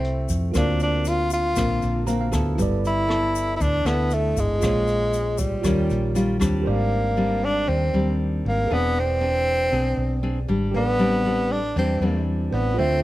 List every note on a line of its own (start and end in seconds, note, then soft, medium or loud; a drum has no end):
0.00 0.26 C2 medium
0.00 0.52 C3 medium
0.00 0.51 A3 medium
0.00 0.28 C4 medium
0.00 0.51 C4 medium
0.00 0.51 E4 medium
0.00 0.49 G4 soft
0.00 0.50 A4 soft
0.00 0.51 C5 soft
0.00 0.52 E5 soft
0.04 closed hi-hat soft
0.29 0.53 F2 medium
0.29 kick soft
0.29 closed hi-hat soft
0.29 shaker medium
0.52 1.53 D2 medium
0.52 1.54 D3 medium
0.52 1.52 A#3 soft
0.52 1.52 C4 soft
0.52 2.03 F4 soft
0.52 1.53 F#4 medium
0.52 2.04 A#4 soft
0.52 2.05 C5 soft
0.52 kick medium
0.52 cross-stick medium
0.52 closed hi-hat soft
0.52 shaker medium
0.57 0.80 D4 medium
0.57 2.06 F5 medium
0.80 1.09 D4 medium
0.80 closed hi-hat soft
0.80 shaker soft
1.05 1.32 F4 medium
1.05 closed hi-hat soft
1.05 shaker medium
1.30 2.05 F4 medium
1.30 closed hi-hat soft
1.30 shaker medium
1.56 1.81 A#1 medium
1.56 2.56 D3 medium
1.56 2.03 A#3 medium
1.56 2.03 C4 medium
1.56 kick medium
1.56 cross-stick medium
1.56 closed hi-hat soft
1.56 shaker medium
1.82 2.30 A#1 medium
1.82 closed hi-hat soft
1.82 shaker soft
2.05 2.28 A#3 medium
2.05 2.29 C4 medium
2.05 2.57 F#4 soft
2.05 2.29 F#4 medium
2.05 2.58 C5 soft
2.05 2.20 F5 soft
2.05 2.19 A#5 medium
2.05 closed hi-hat soft
2.05 shaker soft
2.21 2.56 F5 medium
2.32 2.57 D2 medium
2.32 3.05 B3 medium
2.32 3.05 E4 medium
2.32 3.05 A4 medium
2.32 kick soft
2.32 cross-stick medium
2.32 closed hi-hat soft
2.32 shaker medium
2.55 3.57 G1 medium
2.55 3.57 G3 medium
2.55 4.57 E4 medium
2.55 4.58 A4 soft
2.55 kick medium
2.55 closed hi-hat soft
2.55 shaker medium
2.59 4.59 B4 soft
2.59 4.60 D5 medium
2.85 3.51 E4 loud
2.85 closed hi-hat soft
2.85 shaker soft
3.08 3.81 B3 medium
3.08 3.81 E4 soft
3.08 3.81 A4 medium
3.08 cross-stick medium
3.08 closed hi-hat soft
3.35 closed hi-hat soft
3.35 shaker medium
3.56 4.60 D3 medium
3.56 3.63 E4 medium
3.61 3.84 D2 medium
3.61 3.88 D4 medium
3.61 kick medium
3.61 closed hi-hat soft
3.61 shaker medium
3.85 4.33 D2 medium
3.85 4.58 B3 soft
3.85 4.15 B3 medium
3.85 4.58 E4 medium
3.85 4.58 A4 medium
3.85 cross-stick medium
3.85 closed hi-hat soft
3.85 shaker soft
4.10 4.41 A3 medium
4.10 closed hi-hat soft
4.10 shaker medium
4.37 4.61 G1 medium
4.37 5.40 G#3 medium
4.37 kick soft
4.37 closed hi-hat soft
4.37 shaker medium
4.60 5.61 A#1 medium
4.60 5.62 A#2 medium
4.60 5.60 G#3 soft
4.60 5.60 C#4 medium
4.60 5.60 F4 medium
4.60 5.62 G#4 soft
4.60 kick medium
4.60 cross-stick medium
4.60 closed hi-hat soft
4.60 shaker medium
4.64 5.63 C5 soft
4.64 5.64 C#5 soft
4.87 closed hi-hat soft
4.87 shaker soft
5.13 closed hi-hat soft
5.13 shaker medium
5.38 6.41 G3 medium
5.38 kick medium
5.38 closed hi-hat soft
5.38 shaker medium
5.62 5.88 D#2 medium
5.62 6.63 D#3 medium
5.62 6.11 G3 medium
5.62 6.11 C#4 soft
5.62 6.63 F4 soft
5.62 6.11 F4 medium
5.62 6.60 G4 soft
5.62 6.62 A#4 soft
5.62 kick medium
5.62 cross-stick medium
5.62 closed hi-hat soft
5.62 shaker medium
5.68 6.66 C#5 medium
5.90 6.38 A#1 medium
5.90 closed hi-hat soft
5.90 shaker soft
6.15 6.36 G3 medium
6.15 6.37 C#4 medium
6.15 6.37 F4 medium
6.15 closed hi-hat soft
6.15 shaker soft
6.40 6.65 D#2 medium
6.40 7.13 G3 medium
6.40 7.13 C4 medium
6.40 7.13 D4 medium
6.40 kick soft
6.40 cross-stick medium
6.40 closed hi-hat soft
6.40 shaker medium
6.62 8.64 G4 soft
6.62 8.65 A#4 soft
6.62 8.66 C5 soft
6.66 7.65 G#1 medium
6.66 7.66 G#2 medium
6.66 7.46 A#3 medium
6.66 8.67 D5 medium
7.17 7.89 G3 medium
7.17 7.90 C4 medium
7.17 7.90 D4 medium
7.44 7.70 D4 medium
7.68 7.92 D#2 medium
7.68 8.67 D#3 medium
7.68 8.20 C4 medium
7.94 8.41 D#2 medium
7.94 8.66 G3 medium
7.94 8.66 C4 medium
7.94 8.67 D4 medium
8.45 8.69 G#1 medium
8.45 8.74 A#3 medium
8.67 9.68 E1 medium
8.67 9.70 E3 medium
8.67 9.03 C4 medium
8.67 9.03 D4 medium
8.67 10.69 G#4 soft
8.67 10.69 B4 soft
8.67 10.70 C5 soft
8.71 9.01 B3 loud
8.71 9.04 G#4 medium
8.71 10.72 D5 medium
8.99 10.51 C4 loud
9.21 9.68 C4 medium
9.21 9.68 D4 medium
9.21 9.68 G#4 medium
9.72 9.96 B1 medium
9.72 10.19 C4 medium
9.72 10.19 D4 medium
9.72 10.20 G#4 medium
9.97 10.45 B1 medium
10.23 10.38 C4 medium
10.23 10.38 D4 medium
10.23 10.38 G#4 medium
10.48 10.72 G#1 medium
10.48 10.98 G3 medium
10.48 10.99 D4 medium
10.71 11.72 A1 medium
10.71 11.74 A2 soft
10.71 11.53 B3 loud
10.71 12.48 G4 soft
10.71 12.49 B4 soft
10.76 12.50 A4 soft
10.76 12.51 D5 medium
10.99 11.21 G3 medium
10.99 11.21 C4 medium
10.99 11.21 D4 medium
11.25 11.58 G3 medium
11.25 11.58 C4 medium
11.25 11.59 D4 medium
11.52 11.77 D4 medium
11.76 12.00 E2 medium
11.76 12.76 E3 medium
11.76 11.98 G3 medium
11.76 11.98 C4 medium
11.76 12.25 C4 medium
11.76 11.98 D4 medium
12.01 12.48 E2 medium
12.01 12.74 G3 medium
12.01 12.74 C4 medium
12.01 12.74 D4 medium
12.51 12.76 A1 medium
12.51 12.79 B3 medium
12.51 12.77 G4 soft
12.51 12.78 B4 soft
12.51 12.77 C5 soft
12.51 12.79 D5 soft
12.74 13.03 D3 medium
12.74 13.03 A3 medium
12.74 13.02 C4 loud
12.74 13.03 F4 medium
12.74 13.03 A4 soft
12.78 13.03 D2 medium
12.78 13.03 C4 medium
12.78 13.03 F4 medium
12.78 13.03 C5 soft
12.78 13.03 E5 medium